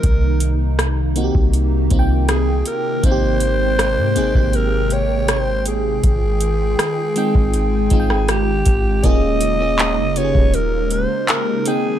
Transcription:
Already playing: D#4 A#4
0.03 C2 C3 D#3 A#3, kick, closed hi-hat
0.40 closed hi-hat
0.79 cross-stick, closed hi-hat
1.16 A#3 C4 D#4 F#4, closed hi-hat
1.24 G4
1.35 C2, kick
1.53 closed hi-hat
1.90 C2 A#3 C4 D#4 F4, kick, closed hi-hat
1.99 G5
2.29 G#4, cross-stick, closed hi-hat
2.66 A#4, closed hi-hat
3.03 G#1 C3 G#3 A#3 C4 D#4 F4 C5 G5, kick, closed hi-hat
3.11 G4
3.40 closed hi-hat
3.79 cross-stick, closed hi-hat
3.98 G#2
4.16 G#1 A#3 C4 D#4 G#4, closed hi-hat
4.34 G#1 C3 A#3 D#4 G4, kick
4.53 A#4, closed hi-hat
4.90 C#5, closed hi-hat
5.28 C5, cross-stick, closed hi-hat
5.66 G#4, closed hi-hat
6.04 G#1 D#3 G#3 F4 G5, kick, closed hi-hat
6.41 closed hi-hat
6.79 cross-stick, closed hi-hat
7.16 G#3 C4 D#4 G5, closed hi-hat
7.35 G#1, kick
7.54 closed hi-hat
7.90 G#1 G#3 C4 D#4 F4, kick, closed hi-hat
8.00 G5
8.10 cross-stick
8.28 G4, cross-stick, closed hi-hat
8.66 G#1, kick, closed hi-hat
9.04 D#1 C#3 G#3 A#3 C#4 D#4 F4 G#4 D#5, kick, closed hi-hat
9.41 closed hi-hat
9.60 A#3 C#4 F4 G#4
9.79 clap, closed hi-hat
9.98 F1
10.16 A#3 C#4 F4 G4 C#5, closed hi-hat
10.25 G#4
10.35 D#1, kick
10.54 A#4, closed hi-hat
10.90 C5, closed hi-hat
11.28 A#4, clap, closed hi-hat
11.66 D#3 A#3 C4 D#4 G#4 G5, closed hi-hat

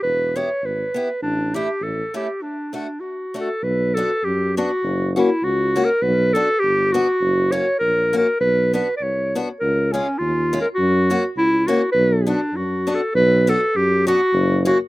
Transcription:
0.03 E1 B4
0.36 B3 E4 G4 C#5
0.62 G#1 B4
0.94 B3 E4 G4
1.22 A1 D4
1.54 A3 D4 E4 G4
1.80 A1 A4
2.14 A3 C#4 E4 G4
2.42 D4
2.73 A3 D4 F#4
3.00 F#4
3.34 A3 D4 F#4
3.40 A4
3.62 B1 B4
3.94 B3 D4 A4
3.98 F#4
4.24 F#2 G4
4.57 B3 D4 F#4
4.83 F#1
5.16 A#3 C#4 E4 F#4
5.42 C#2 F#4
5.76 A#3 C#4 F#4
5.85 A#4
6.02 B1 B4
6.34 B3 D4 F#4 A4
6.60 G1 G4
6.92 B3 D4 F#4
7.20 F#1
7.52 A#3 C#4 F#4 C#5
7.79 A#1 A#4
8.13 A#3 C#4 F#4
8.18 A#4
8.40 B1 B4
8.73 B3 D4 F#4 B4
8.97 D5
9.02 C2 C#5
9.35 B3 D4 F#4
9.60 C#2 A#4
9.92 G#3 C#4 F4
10.18 D#2 F4
10.53 G#3 C#4 F4
10.61 A#4
10.75 F#2 F#4
11.10 A#3 C#4 F#4
11.36 C#2 E4
11.67 A#3 C#4 F#4
11.92 B1 B4
12.27 B3 D4 F#4
12.53 F#2 F#4
12.87 B3 D4 F#4
12.95 A4
13.15 B1 B4
13.47 B3 D4 F#4 A4
13.75 F#2 G4
14.07 B3 D4 F#4
14.33 F#1
14.65 A#3 C#4 F#4

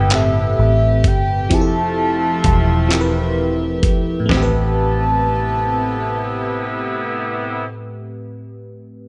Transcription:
Already playing: G1 A2 C3 A3 B3 C4 E4 G4 B4 G5
0.10 A2 A3 C4, clap, closed hi-hat
0.14 G4 A4 E5
0.59 A1
1.04 G1 G5, kick, closed hi-hat
1.49 F1 C3 F3 A3 C4 E4 F4 E5, kick, closed hi-hat
1.54 G4 G#4 A5
1.61 A4
2.44 E1, kick, closed hi-hat
2.89 F3 C4 E4, clap, closed hi-hat
2.93 G4 A#4
3.01 B4
3.83 kick, closed hi-hat
4.20 A2
4.26 C3 A3 B3 E4, floor tom
4.31 A1 C3 A3 C4 G4 B4 A5, snare
4.37 G4
4.42 B4

